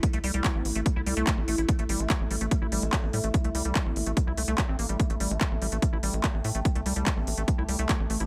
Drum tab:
HH |xxoxx-oxx-oxx-ox|xxoxx-oxx-oxx-ox|xxoxx-oxx-oxx-ox|xxoxx-oxx-oxx-ox|
CP |----x-------x---|----x-------x---|----x-------x---|----x-------x---|
BD |o---o---o---o---|o---o---o---o---|o---o---o---o---|o---o---o---o---|

HH |xxoxx-oxx-oxx-ox|
CP |----x-------x---|
BD |o---o---o---o---|